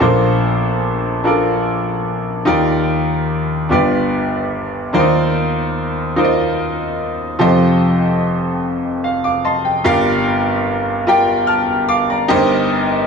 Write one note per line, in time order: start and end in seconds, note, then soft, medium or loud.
0.00 2.44 A#1 medium
0.00 2.43 A#2 medium
0.00 1.14 D4 medium
0.00 1.14 F4 medium
0.00 1.14 A4 medium
0.00 1.15 A#4 medium
0.00 1.15 C5 medium
1.24 2.38 D4 medium
1.24 2.38 F4 soft
1.24 2.38 A4 medium
1.24 2.38 A#4 medium
1.24 2.39 D5 medium
2.45 3.66 D#2 medium
2.45 3.66 D#3 medium
2.45 3.60 D#4 medium
2.45 3.60 F4 medium
2.45 3.61 G4 medium
2.45 3.61 A#4 medium
2.45 3.61 D5 medium
3.69 4.90 G1 medium
3.69 4.90 G2 medium
3.69 4.84 D4 medium
3.69 4.84 F4 medium
3.69 4.84 G4 medium
3.69 4.85 B4 medium
3.69 4.85 D5 medium
4.93 7.36 D#2 medium
4.93 7.36 D#3 medium
4.93 5.00 D4 medium
4.93 6.07 F4 medium
4.93 6.08 A#4 medium
4.93 6.08 C5 medium
4.93 6.08 D5 medium
5.00 6.10 D#4 medium
6.16 7.30 D#4 medium
6.16 7.30 F4 medium
6.16 7.31 A#4 medium
6.16 7.31 C5 medium
6.16 6.24 D5 medium
6.24 7.34 D#5 medium
7.39 9.82 F1 medium
7.39 9.82 F2 medium
7.39 8.53 F4 medium
7.39 8.53 G4 medium
7.39 8.53 A4 medium
7.39 8.54 C5 medium
7.39 8.54 D#5 medium
9.04 9.24 F5 soft
9.24 9.44 F5 soft
9.24 9.44 D6 soft
9.45 9.64 D#5 soft
9.45 9.83 A5 medium
9.45 9.64 C6 medium
9.65 10.04 G5 soft
9.84 12.26 G1 medium
9.84 12.26 G2 medium
9.84 10.98 F4 medium
9.84 10.98 G4 medium
9.84 10.98 A#4 medium
9.84 10.98 D5 medium
9.84 10.98 F5 medium
11.07 12.20 F4 medium
11.07 12.21 G4 medium
11.07 12.21 A#4 medium
11.07 11.49 D5 medium
11.07 11.49 G5 medium
11.47 11.87 A5 soft
11.47 11.87 F6 medium
11.89 12.09 F5 medium
11.89 12.08 D6 medium
12.10 12.49 D5 soft
12.10 12.49 A#5 medium
12.28 13.07 G1 medium
12.28 13.07 G2 medium
12.28 13.07 D#4 medium
12.28 13.07 G4 medium
12.28 13.07 A#4 medium
12.28 13.07 C5 medium
12.28 13.07 D#5 loud